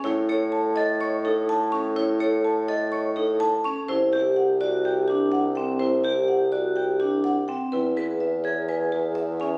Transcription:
Already playing: vibraphone C#4, marimba C#6
0.04 bassoon A2, vibraphone E4, marimba C#5
0.29 marimba A4, vibraphone C#5
0.52 marimba A5
0.76 vibraphone A4, marimba D#5
1.01 vibraphone C#5, marimba C#6
1.25 vibraphone D#4, marimba A4
1.49 marimba A5
1.72 vibraphone C#4, marimba C#6
1.96 vibraphone E4, marimba C#5
2.20 marimba A4, vibraphone C#5
2.44 marimba A5
2.68 vibraphone A4, marimba D#5
2.92 vibraphone C#5, marimba C#6
3.16 vibraphone D#4, marimba A4
3.40 marimba A5
3.64 vibraphone C#4, marimba C#6
3.89 bassoon C2, vibraphone E4, marimba C5
4.13 marimba G4, vibraphone G4
4.36 marimba F#5
4.61 vibraphone F#4, marimba D5
4.85 vibraphone G4, marimba G5
5.08 vibraphone D4, marimba G4
5.32 marimba F#5
5.55 vibraphone C4, marimba G5
5.79 vibraphone E4, marimba C5
6.04 marimba G4, vibraphone G4
6.28 marimba F#5
6.52 vibraphone F#4, marimba D5
6.76 vibraphone G4, marimba G5
7.00 vibraphone D4, marimba G4
7.24 marimba F#5
7.48 vibraphone C4, marimba G5
7.72 bassoon E2, vibraphone E4, marimba B4
7.97 marimba G#4, vibraphone B4
8.20 marimba E5
8.44 vibraphone G#4, marimba C#5
8.69 vibraphone B4, marimba G#5
8.92 marimba G#4
9.15 marimba E5
9.40 vibraphone C#4, marimba G#5

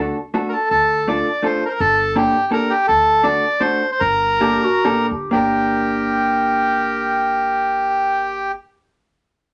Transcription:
Already playing: hollow-body jazz guitar A3 D4 F#4 A4
0.34 hollow-body jazz guitar A3 D4 F#4 A4
0.49 bandoneon A4 A#4
0.70 upright bass D2, bandoneon A4
1.08 hollow-body jazz guitar A3 D4 F4 A4, bandoneon D5
1.42 hollow-body jazz guitar A3 D4 F4 A4, bandoneon C5
1.65 bandoneon A#4 C5
1.71 bandoneon A#4
1.80 upright bass G1, bandoneon A4
2.16 hollow-body jazz guitar A#3 D4 G4 A4, bandoneon G4
2.51 hollow-body jazz guitar A#3 D4 G4 A4, bandoneon A#4
2.70 bandoneon G4
2.88 upright bass D2, bandoneon A4
3.24 hollow-body jazz guitar A3 D4 F#4 A4, bandoneon D5
3.60 hollow-body jazz guitar A3 D4 F#4 A4, bandoneon C5
3.92 bandoneon C5
4.00 upright bass G1, bandoneon A#4
4.41 hollow-body jazz guitar A#3 D4 G4 A4, clarinet G4
4.63 clarinet F#4
4.85 upright bass A1, hollow-body jazz guitar A#3 D4 G4 A4, clarinet G4
5.11 upright bass G1
5.31 upright bass G1, hollow-body jazz guitar A#3 D4 G4 A#4, bandoneon G4, clarinet A#4

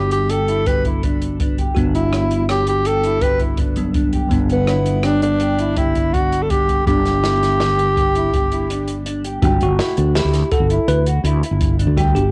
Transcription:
Already playing: fretless electric bass G1, tine electric piano G3 B3 D4 F#4, tenor saxophone G4, clean electric guitar G4
0.11 tenor saxophone G4, closed hi-hat
0.29 clean electric guitar G4, tenor saxophone A4, closed hi-hat
0.48 clean electric guitar E4, closed hi-hat
0.66 clean electric guitar G4, tenor saxophone B4, kick, closed hi-hat
0.85 clean electric guitar E4, kick, closed hi-hat
1.03 clean electric guitar D4, kick, closed hi-hat
1.22 closed hi-hat
1.40 clean electric guitar D4, kick, closed hi-hat
1.58 clean electric guitar G4, kick, closed hi-hat
1.75 fretless electric bass G1, tine electric piano G3 B3 D4 F#4, clean electric guitar D4, kick, closed hi-hat
1.95 tenor saxophone E4, closed hi-hat
2.13 clean electric guitar E4, cross-stick, closed hi-hat
2.31 closed hi-hat
2.49 clean electric guitar G4, tenor saxophone G4, cross-stick, closed hi-hat
2.67 tenor saxophone G4, closed hi-hat
2.85 clean electric guitar G4, tenor saxophone A4, closed hi-hat
3.04 clean electric guitar E4, closed hi-hat
3.21 clean electric guitar G4, tenor saxophone B4, kick, closed hi-hat
3.39 clean electric guitar E4, kick, closed hi-hat
3.57 clean electric guitar D4, kick, closed hi-hat
3.76 tine electric piano F#3 G3 B3 D4, closed hi-hat
3.94 clean electric guitar D4, kick, closed hi-hat
4.13 clean electric guitar G4, kick, closed hi-hat
4.29 fretless electric bass G1, tine electric piano D3 G3 B3 D4, clean electric guitar D4, kick, closed hi-hat
4.49 tenor saxophone B3, closed hi-hat
4.67 clean electric guitar E4, cross-stick, closed hi-hat
4.86 closed hi-hat
5.03 tenor saxophone D4, clean electric guitar G4, cross-stick, closed hi-hat
5.22 tenor saxophone D4, closed hi-hat
5.40 clean electric guitar G4, closed hi-hat
5.59 clean electric guitar E4, closed hi-hat
5.77 tenor saxophone E4, clean electric guitar G4, kick, closed hi-hat
5.95 clean electric guitar E4, kick, closed hi-hat
6.14 clean electric guitar D4, tenor saxophone F#4, kick, closed hi-hat
6.32 closed hi-hat
6.43 tenor saxophone A4
6.50 clean electric guitar D4, tenor saxophone G4, kick, closed hi-hat
6.69 clean electric guitar G4, kick, closed hi-hat
6.86 fretless electric bass G1, tine electric piano D3 G3 B3 D4, clean electric guitar D4, tenor saxophone G4, kick, closed hi-hat
7.05 snare, closed hi-hat
7.23 clean electric guitar E4, snare, closed hi-hat
7.43 snare, closed hi-hat
7.60 clean electric guitar G4, snare, closed hi-hat
7.79 closed hi-hat
7.96 clean electric guitar G4, kick, closed hi-hat
8.15 clean electric guitar E4, closed hi-hat
8.34 clean electric guitar G4, kick, closed hi-hat
8.52 clean electric guitar E4, closed hi-hat
8.70 clean electric guitar D4, closed hi-hat
8.88 closed hi-hat
9.06 clean electric guitar D4, closed hi-hat
9.25 clean electric guitar G4, closed hi-hat
9.42 fretless electric bass G1, tine electric piano G3 D4 F#4, clean electric guitar G4, kick, closed hi-hat
9.61 fretless electric bass G1, tine electric piano F#4, closed hi-hat
9.79 clean electric guitar E4, snare, closed hi-hat
9.97 fretless electric bass D2, clean electric guitar D4, closed hi-hat
10.15 clean electric guitar E4, tine electric piano G4, snare, closed hi-hat
10.25 fretless electric bass D2
10.33 snare, closed hi-hat
10.52 clean electric guitar F#4, tine electric piano A4, kick, closed hi-hat
10.60 fretless electric bass G1
10.70 clean electric guitar E4, closed hi-hat
10.88 fretless electric bass D2, tine electric piano B4, closed hi-hat
11.06 clean electric guitar F#4, closed hi-hat
11.24 fretless electric bass D2, clean electric guitar E4, closed hi-hat
11.43 clean electric guitar E4, closed hi-hat
11.51 fretless electric bass G1
11.61 kick, closed hi-hat
11.79 clean electric guitar D4, closed hi-hat
11.87 fretless electric bass D2
11.97 tine electric piano G3 D4 F#4, clean electric guitar G4, kick, closed hi-hat
12.15 fretless electric bass G1, tine electric piano G4, closed hi-hat

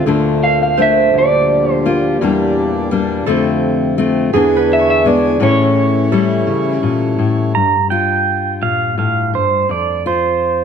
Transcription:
Already playing: harmonium D2, harp F4 A4
0.05 steel-string acoustic guitar D2 D3 A3 A#3 D4, harmonium A#2 C4
0.43 clean electric guitar F5
0.63 clean electric guitar F5
0.77 steel-string acoustic guitar A3 A#3 D4, harp C5
0.82 clean electric guitar E5
1.14 steel-string acoustic guitar D2, harmonium A#2 F3 G3
1.19 clean electric guitar D5
1.72 clean electric guitar C5
1.86 steel-string acoustic guitar A#3 F4
2.20 harmonium E2 D4, steel-string acoustic guitar E2 E3 G3 A#3 D4
2.91 steel-string acoustic guitar G3 A#3 D4
3.25 harmonium F2 C3, steel-string acoustic guitar F2 D3 A3 C4, harp A4
3.29 steel-string acoustic guitar F4
3.98 steel-string acoustic guitar A3 C4 F4
4.33 harmonium E2 D3 G#5, steel-string acoustic guitar E2 E3 B3 D4, harp G#4
4.56 harp B4
4.73 clean electric guitar E5
4.79 harp C#6
4.90 clean electric guitar E5
5.05 steel-string acoustic guitar G#3 B3 D4, clean electric guitar D5
5.40 steel-string acoustic guitar A2 E3 C#4 E4, harmonium E3 A3 C#5, clean electric guitar C#5
6.12 steel-string acoustic guitar G3 C#4 E4, harp A4
6.47 steel-string acoustic guitar C#3
6.83 steel-string acoustic guitar A#2
7.19 steel-string acoustic guitar A2
7.55 steel-string acoustic guitar G2, pedal steel guitar A#5
7.90 steel-string acoustic guitar F4, pedal steel guitar G5
8.62 steel-string acoustic guitar A#2, pedal steel guitar F5
8.98 steel-string acoustic guitar A2, pedal steel guitar F5
9.34 steel-string acoustic guitar G2, pedal steel guitar C5
9.69 steel-string acoustic guitar F2, pedal steel guitar D5
10.06 steel-string acoustic guitar F4, pedal steel guitar C5

